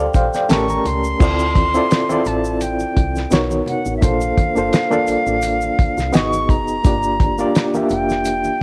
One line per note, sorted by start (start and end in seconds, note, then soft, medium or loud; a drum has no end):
0.00 0.51 G3 medium
0.00 0.52 D4 medium
0.00 0.51 F4 medium
0.00 0.51 G4 medium
0.00 0.14 A4 medium
0.00 0.52 A#4 loud
0.00 0.16 C5 medium
0.00 0.35 D5 medium
0.00 0.16 F5 medium
0.00 0.48 G5 medium
0.14 0.30 A#1 loud
0.14 0.33 C5 medium
0.14 0.33 F5 medium
0.14 0.33 G5 medium
0.14 kick medium
0.14 closed hi-hat medium
0.14 high conga medium
0.14 shaker soft
0.34 0.68 D5 medium
0.34 0.68 G5 medium
0.34 snare soft
0.34 shaker soft
0.49 0.79 A1 loud
0.49 1.07 A3 medium
0.49 1.07 C#4 medium
0.49 1.08 G4 medium
0.49 1.08 A#4 medium
0.49 0.68 A5 medium
0.49 0.89 C#6 loud
0.49 snare loud
0.49 closed hi-hat loud
0.49 muted conga soft
0.49 high conga medium
0.49 shaker medium
0.68 1.17 A#5 medium
0.68 muted conga soft
0.68 high conga medium
0.68 shaker soft
0.84 1.14 C#2 medium
0.84 2.29 C6 loud
0.84 closed hi-hat medium
0.84 low conga medium
0.84 shaker soft
1.04 shaker medium
1.19 1.79 D2 loud
1.19 1.55 C4 medium
1.19 1.55 E4 medium
1.19 1.56 F4 medium
1.19 1.56 A4 medium
1.19 1.56 D5 medium
1.19 kick loud
1.19 crash medium
1.19 muted conga soft
1.19 low conga medium
1.19 shaker medium
1.39 muted conga soft
1.39 shaker medium
1.55 kick medium
1.55 closed hi-hat medium
1.55 high conga loud
1.74 1.97 C4 medium
1.74 1.97 E4 medium
1.74 1.98 F4 medium
1.74 1.98 A4 medium
1.74 1.98 D5 medium
1.74 shaker medium
1.91 snare loud
1.91 closed hi-hat medium
1.91 muted conga soft
1.91 shaker medium
2.09 3.02 C4 medium
2.09 3.02 E4 medium
2.09 3.02 F4 medium
2.09 3.03 A4 medium
2.09 3.03 D5 medium
2.09 high conga medium
2.09 shaker medium
2.25 2.85 A1 medium
2.25 2.64 A5 medium
2.25 closed hi-hat medium
2.25 shaker medium
2.45 shaker soft
2.61 3.33 G5 medium
2.61 closed hi-hat medium
2.61 muted conga soft
2.61 shaker medium
2.79 muted conga soft
2.79 shaker medium
2.96 3.26 C2 medium
2.96 kick medium
2.96 closed hi-hat medium
2.96 high conga medium
3.16 snare soft
3.16 shaker soft
3.31 3.61 B1 loud
3.31 3.89 B3 medium
3.31 3.89 D#4 medium
3.31 3.90 F#4 medium
3.31 3.90 A#4 medium
3.31 3.90 C#5 medium
3.31 snare loud
3.31 closed hi-hat loud
3.31 muted conga soft
3.31 high conga medium
3.31 shaker medium
3.51 muted conga soft
3.51 high conga medium
3.51 shaker medium
3.66 3.94 F#5 loud
3.66 closed hi-hat medium
3.66 low conga medium
3.86 4.00 A1 medium
3.86 shaker medium
3.97 4.04 E5 medium
4.01 4.32 A#1 loud
4.01 4.37 A#3 medium
4.01 4.37 D4 medium
4.01 4.37 F4 medium
4.01 4.38 A4 medium
4.01 4.38 C5 medium
4.01 6.17 F5 loud
4.01 kick loud
4.01 closed hi-hat loud
4.01 muted conga soft
4.01 low conga medium
4.01 shaker medium
4.21 muted conga soft
4.21 shaker medium
4.38 kick medium
4.38 closed hi-hat medium
4.38 high conga medium
4.55 4.70 G1 medium
4.55 4.79 A#3 medium
4.55 4.79 D4 medium
4.55 4.79 F4 medium
4.55 4.80 A4 medium
4.55 4.80 C5 medium
4.55 shaker soft
4.73 snare loud
4.73 closed hi-hat medium
4.73 shaker medium
4.91 5.84 A#3 medium
4.91 5.84 D4 medium
4.91 5.84 F4 medium
4.91 5.85 A4 medium
4.91 5.85 D5 medium
4.91 muted conga soft
4.91 high conga medium
4.91 shaker soft
5.07 5.16 A1 soft
5.07 closed hi-hat medium
5.07 shaker medium
5.27 5.70 A1 medium
5.27 shaker soft
5.42 closed hi-hat medium
5.42 muted conga soft
5.42 shaker medium
5.61 muted conga soft
5.61 shaker medium
5.79 5.86 C2 medium
5.79 kick loud
5.79 closed hi-hat medium
5.79 high conga medium
5.98 6.11 C2 medium
5.98 snare soft
5.98 shaker soft
6.12 6.51 G#1 loud
6.12 6.71 B3 medium
6.12 6.71 D#4 medium
6.12 6.72 F#4 medium
6.12 6.72 G#4 medium
6.12 6.72 D#5 medium
6.12 6.52 C#6 loud
6.12 snare loud
6.12 closed hi-hat loud
6.12 high conga medium
6.12 shaker medium
6.33 high conga medium
6.33 shaker medium
6.49 6.79 F#1 medium
6.49 7.65 A#5 loud
6.49 kick loud
6.49 closed hi-hat medium
6.49 low conga medium
6.68 shaker medium
6.83 7.43 G1 loud
6.83 7.19 A#3 medium
6.83 7.20 D4 medium
6.83 7.20 F4 medium
6.83 7.20 G4 medium
6.83 7.21 D5 medium
6.83 kick loud
6.83 closed hi-hat loud
6.83 low conga medium
6.83 shaker medium
7.03 shaker medium
7.20 kick loud
7.20 closed hi-hat medium
7.20 high conga loud
7.38 7.61 A#3 medium
7.38 7.62 D4 medium
7.38 7.62 F4 medium
7.38 7.62 G4 medium
7.38 7.62 D5 medium
7.38 shaker soft
7.55 snare loud
7.55 closed hi-hat medium
7.55 muted conga soft
7.55 shaker medium
7.74 8.63 A#3 medium
7.74 8.63 D4 medium
7.74 8.63 F4 medium
7.74 8.63 G4 medium
7.74 8.63 E5 medium
7.74 high conga medium
7.74 shaker soft
7.89 8.49 F1 medium
7.89 8.63 G5 loud
7.89 closed hi-hat medium
7.89 shaker medium
8.09 snare soft
8.09 shaker soft
8.25 closed hi-hat medium
8.25 muted conga soft
8.25 shaker medium
8.44 muted conga soft
8.44 shaker medium